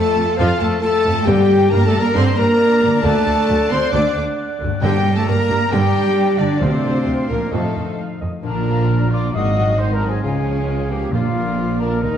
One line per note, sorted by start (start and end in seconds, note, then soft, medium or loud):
0.00 1.20 F2 loud
0.00 0.37 A3 loud
0.00 1.22 C4 medium
0.00 1.27 F4 medium
0.00 0.37 A4 loud
0.00 0.38 A4 loud
0.00 1.24 A4 medium
0.00 1.27 F5 medium
0.00 0.18 A5 loud
0.00 0.37 A5 loud
0.00 0.38 A5 loud
0.16 0.25 F2 medium
0.16 0.24 A3 medium
0.37 0.47 F2 loud
0.37 0.59 F3 loud
0.37 0.46 F3 loud
0.37 0.60 F4 loud
0.37 0.53 C5 loud
0.37 0.62 F5 loud
0.37 0.47 F5 loud
0.37 0.60 F5 loud
0.37 0.54 A5 loud
0.60 0.68 F2 medium
0.60 0.82 A3 loud
0.60 0.69 A3 medium
0.60 0.81 A4 loud
0.60 0.80 A4 loud
0.60 0.82 A5 loud
0.60 0.68 A5 loud
0.60 0.82 A5 loud
0.82 1.26 A3 loud
0.82 1.12 A4 loud
0.82 1.26 A4 loud
0.82 1.26 A5 loud
0.82 1.25 A5 loud
0.82 1.27 A5 loud
1.05 1.13 F2 medium
1.05 1.13 A3 medium
1.09 2.97 G2 medium
1.13 2.99 A#3 medium
1.18 3.02 A#4 medium
1.22 1.70 G4 loud
1.22 2.98 D5 medium
1.22 1.72 G5 loud
1.26 1.89 G2 loud
1.26 1.35 G2 loud
1.26 1.48 D3 loud
1.26 1.71 G3 loud
1.26 4.79 D4 loud
1.26 1.70 G4 loud
1.26 4.78 D5 loud
1.26 1.71 G5 loud
1.26 3.00 A#5 loud
1.49 1.58 G2 medium
1.49 1.57 G3 medium
1.70 1.81 G2 loud
1.70 1.80 A#3 medium
1.70 1.86 A#3 loud
1.70 1.85 A#4 loud
1.70 1.86 A#4 loud
1.70 1.84 A#5 loud
1.70 1.86 A#5 loud
1.85 2.01 A3 loud
1.85 2.00 A4 loud
1.85 2.01 A4 loud
1.85 2.00 A5 loud
1.85 2.01 A5 loud
1.93 2.02 G2 loud
1.93 2.01 G3 medium
2.00 2.06 A#3 loud
2.00 2.15 A#4 loud
2.00 2.16 A#4 loud
2.00 2.16 A#5 loud
2.00 2.07 A#5 loud
2.15 2.24 G2 loud
2.15 2.36 D3 loud
2.15 2.37 C4 loud
2.15 2.38 C5 loud
2.15 2.39 C6 loud
2.15 2.24 C6 loud
2.15 2.38 C6 loud
2.37 2.47 G2 medium
2.37 2.46 G3 medium
2.37 3.03 A#3 loud
2.37 3.03 A#4 loud
2.37 3.04 A#4 loud
2.37 2.81 A#5 loud
2.37 3.03 A#5 loud
2.82 2.90 G2 medium
2.82 2.90 G3 medium
2.86 4.75 D3 loud
2.91 4.77 A3 medium
2.95 4.79 F#4 medium
3.00 3.24 D3 loud
3.00 3.69 A4 loud
3.00 4.76 D5 medium
3.00 4.84 F#5 loud
3.04 3.12 D2 loud
3.04 3.69 A3 loud
3.04 3.71 A4 loud
3.04 3.67 A5 loud
3.04 3.71 A5 loud
3.04 3.70 A5 loud
3.25 3.35 D2 medium
3.25 3.33 D3 medium
3.48 3.57 D2 medium
3.48 3.56 F#3 medium
3.70 3.79 D2 medium
3.70 3.78 D3 medium
3.70 3.93 C4 loud
3.70 3.92 C5 loud
3.70 3.94 C5 loud
3.70 3.93 C6 loud
3.70 3.77 C6 loud
3.70 3.94 C6 loud
3.93 4.01 D2 loud
3.93 4.14 D3 medium
3.93 4.15 D4 loud
3.93 4.15 D5 loud
3.93 4.15 D6 loud
3.93 4.16 D6 medium
4.16 4.24 D2 medium
4.16 4.24 D3 medium
4.59 4.69 D2 medium
4.59 4.67 D3 medium
4.64 6.54 G2 loud
4.68 6.56 A#3 medium
4.73 6.59 G4 medium
4.77 6.55 D5 medium
4.82 5.46 G2 loud
4.82 4.91 G2 loud
4.82 5.03 D3 loud
4.82 5.14 G3 loud
4.82 7.48 D4 medium
4.82 5.13 G4 loud
4.82 5.14 G4 loud
4.82 7.52 D5 loud
4.82 5.13 G5 loud
4.82 5.14 G5 loud
4.82 6.62 A#5 loud
5.05 5.13 G2 medium
5.05 5.13 G3 medium
5.15 5.27 A3 loud
5.15 5.27 A4 loud
5.15 5.28 A4 loud
5.15 5.27 A5 loud
5.15 5.29 A5 loud
5.15 5.27 A5 loud
5.25 5.36 G2 medium
5.25 5.35 A#3 medium
5.25 5.72 A#3 loud
5.25 5.72 A#4 loud
5.25 5.70 A#5 loud
5.25 5.73 A#5 loud
5.25 5.71 A#5 loud
5.49 5.58 G2 medium
5.49 5.57 G3 medium
5.71 5.81 G2 loud
5.71 5.93 D3 loud
5.71 6.38 G3 loud
5.71 6.38 G4 loud
5.71 6.39 G4 loud
5.71 6.39 G5 loud
5.71 6.40 G5 loud
5.71 6.39 G5 loud
5.94 6.03 G2 medium
5.94 6.02 G3 medium
6.38 6.47 G2 medium
6.38 6.62 D3 loud
6.38 6.47 G3 medium
6.38 6.61 D4 loud
6.38 6.46 D5 loud
6.38 6.60 D5 loud
6.38 6.61 D5 medium
6.43 7.45 D3 medium
6.47 7.47 D4 medium
6.52 7.42 F4 medium
6.56 7.52 D5 medium
6.56 8.21 F5 medium
6.61 6.70 D2 loud
6.61 7.29 C3 loud
6.61 6.82 C3 medium
6.61 7.26 D3 loud
6.61 7.29 C4 loud
6.61 7.28 C5 loud
6.61 7.28 C5 medium
6.61 7.30 C5 medium
6.83 6.92 D2 medium
6.83 6.91 D3 medium
7.06 7.14 D2 medium
7.06 7.15 F3 medium
7.29 7.38 D2 medium
7.29 7.52 A#2 medium
7.29 7.37 D3 medium
7.29 7.52 A#3 medium
7.29 7.40 A#3 medium
7.29 7.53 A#4 medium
7.29 7.52 A#4 medium
7.29 7.53 A#4 medium
7.34 8.54 F3 medium
7.38 8.39 D#4 medium
7.43 8.76 F4 medium
7.47 8.43 C5 medium
7.47 7.85 D#5 medium
7.51 7.60 F2 loud
7.51 7.97 A2 medium
7.51 7.74 C3 medium
7.51 7.97 A3 medium
7.51 7.98 A3 medium
7.51 8.24 D#4 medium
7.51 7.97 A4 medium
7.51 7.98 A4 medium
7.75 7.84 F2 medium
7.75 7.83 D#3 medium
7.98 8.20 F5 medium
8.21 8.29 F2 medium
8.21 8.29 D#3 medium
8.21 8.32 D#5 medium
8.42 9.30 A#1 medium
8.42 9.29 A#2 medium
8.42 9.35 A#2 medium
8.42 8.65 D3 medium
8.42 8.65 F3 medium
8.42 9.29 D4 medium
8.42 8.65 D4 medium
8.42 9.07 D4 medium
8.42 9.29 F4 medium
8.42 9.07 A#4 loud
8.42 9.07 A#5 medium
8.55 9.35 F3 medium
8.66 8.88 D3 medium
8.66 8.89 F3 medium
8.66 8.89 A#3 medium
8.66 9.35 D4 medium
8.66 8.89 F4 medium
8.78 9.36 F4 medium
8.88 9.10 D3 medium
8.88 9.10 F3 medium
8.88 9.11 D4 medium
8.88 9.35 A#4 medium
9.00 9.36 D5 medium
9.11 9.34 D3 medium
9.11 9.34 F3 medium
9.11 9.34 A#3 medium
9.11 9.34 F4 medium
9.11 9.33 D5 loud
9.11 9.35 F5 medium
9.11 9.33 D6 medium
9.23 9.36 A#5 medium
9.33 10.24 G#1 medium
9.33 10.23 G#2 medium
9.33 10.25 G#2 medium
9.33 9.54 D#3 medium
9.33 9.54 G#3 medium
9.33 9.78 C4 medium
9.33 9.55 D#4 medium
9.33 9.78 F#4 medium
9.33 9.77 D#5 loud
9.33 9.79 F5 medium
9.33 9.80 D#6 medium
9.45 10.25 D#3 medium
9.56 9.79 F#3 medium
9.56 9.79 C4 medium
9.56 10.25 D#4 medium
9.56 9.79 F#4 medium
9.68 10.26 F#4 medium
9.78 10.01 D#3 medium
9.78 10.01 G#3 medium
9.78 10.23 C4 medium
9.78 9.94 D#4 medium
9.78 10.02 D#4 medium
9.78 10.23 F#4 medium
9.78 9.93 C5 loud
9.78 10.26 C5 soft
9.78 10.23 D#5 medium
9.78 9.92 C6 medium
9.90 10.08 A#4 loud
9.90 10.25 D#5 medium
9.90 10.07 A#5 medium
9.95 10.09 D4 medium
10.01 10.24 F#3 medium
10.01 10.24 C4 medium
10.01 10.24 F#4 medium
10.01 10.26 F#5 medium
10.08 10.23 C4 medium
10.08 10.21 G#4 loud
10.08 10.22 G#5 medium
10.13 10.25 C6 medium
10.22 11.11 C#2 medium
10.22 11.11 C#3 medium
10.22 11.15 C#3 medium
10.22 10.44 G#3 medium
10.22 11.12 C#4 medium
10.22 10.90 C#4 medium
10.22 11.10 F4 medium
10.22 10.44 F4 medium
10.22 10.88 G#4 medium
10.22 10.67 F5 medium
10.22 10.88 G#5 medium
10.35 11.15 G#3 soft
10.46 10.68 F3 medium
10.46 10.68 C#4 medium
10.46 11.15 C#4 medium
10.46 10.68 G#4 medium
10.57 11.45 F4 medium
10.67 10.90 G#3 medium
10.67 10.91 F4 medium
10.67 11.13 F5 medium
10.79 11.14 C#5 medium
10.89 11.11 F3 medium
10.89 11.11 A#3 medium
10.89 11.13 C#4 medium
10.89 11.12 G4 medium
10.89 11.13 G#4 medium
10.89 11.79 F5 medium
10.89 10.96 G5 medium
11.02 11.15 G#5 medium
11.12 12.00 A#1 medium
11.12 11.76 A#2 medium
11.12 12.04 A#2 medium
11.12 12.00 A#2 medium
11.12 11.33 F3 medium
11.12 11.78 A#3 medium
11.12 11.33 A#3 medium
11.12 12.02 D4 medium
11.12 11.79 F4 loud
11.12 12.00 F4 medium
11.12 11.34 F4 medium
11.12 12.01 D5 medium
11.12 11.78 F5 medium
11.24 12.04 F3 medium
11.34 11.57 D3 medium
11.34 11.56 F3 medium
11.34 12.04 D4 medium
11.34 11.58 D4 medium
11.34 11.58 A#4 medium
11.46 12.04 F4 medium
11.57 11.78 F3 medium
11.57 11.80 A#3 medium
11.57 11.80 F4 medium
11.57 12.18 A#4 medium
11.69 12.04 D5 medium
11.79 12.02 D3 soft
11.79 12.02 F3 medium
11.79 12.02 D4 medium
11.79 12.01 A#4 loud
11.79 12.02 A#4 medium
11.79 12.04 F5 medium
11.79 11.85 A#5 medium
11.91 12.18 A#5 soft
12.02 12.18 D#2 medium
12.02 12.18 D#3 medium
12.02 12.18 G3 medium
12.02 12.18 A#3 medium
12.02 12.18 D#4 medium
12.02 12.18 G4 medium
12.02 12.18 A#4 loud
12.02 12.18 D#5 medium
12.02 12.18 A#5 medium
12.14 12.18 A#3 medium